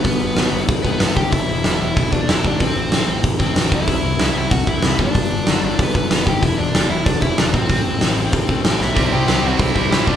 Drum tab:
HH |o-o-o-o-|o-o-o-o-|o-o-o-o-|o-o-o-o-|
SD |--o---o-|--o---o-|--o---o-|--o---o-|
BD |o---oo-o|o---oo-o|o---oo-o|o---oo-o|

HH |o-o-o-o-|o-o-o-o-|o-o-o-o-|o-o-o-o-|
SD |--o---o-|--o---o-|--o---oo|--o---o-|
BD |o---oo-o|o---oo-o|o---oo--|o---oo-o|